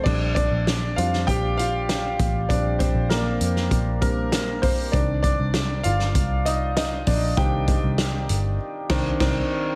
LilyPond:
<<
  \new Staff \with { instrumentName = "Grand piano" } { \time 4/4 \key bes \major \tempo 4 = 98 << { d''8 <d' d''>4 <f' f''>8 <g' g''>8 <f' f''>4. | d''8 <c' c''>8 <bes bes'>4. <bes bes'>4 <c' c''>8 | <d' d''>8 <d' d''>4 <f' f''>4 <ees' ees''>8 <ees' ees''>8 <d' d''>8 | <g' g''>2 r8 <ees c' d'>8 <ees c' d'>8 r8 | } \\ { <g c' d'>4. <g c' d'>8 r2 | <g c' d'>4. r4 <g c' d'>8 r4 | <ees c'>1 | <ees c' d'>2 r2 | } >> }
  \new Staff \with { instrumentName = "Picked electric bass" } { \clef bass \time 4/4 \key bes \major bes,,8. bes,,8. f,8 bes,,4. a,,8 | bes,,8. bes,,8. f,8 bes,,2 | c,8. c,8. g,,8 c,4. bes,,8 | c,8. c,8. g,,8 r8 c,8 c,8 r8 | }
  \new DrumStaff \with { instrumentName = "Drums" } \drummode { \time 4/4 <cymc bd>8 <hh bd>8 <hh sn>8 hh16 sn16 <hh bd>8 hh8 <hh sn>8 <hh bd>8 | <hh bd>8 <hh bd>8 <hh sn>8 hh16 sn16 <hh bd>8 <hh bd>8 <hh sn>8 <hho bd>8 | <hh bd>8 <hh bd>8 <hh sn>8 hh16 sn16 <hh bd>8 hh8 <hh sn>8 <hho bd>8 | <hh bd>8 <hh bd>8 <hh sn>8 hh8 r8 <cymc bd sn>8 <cymc bd sn>4 | }
>>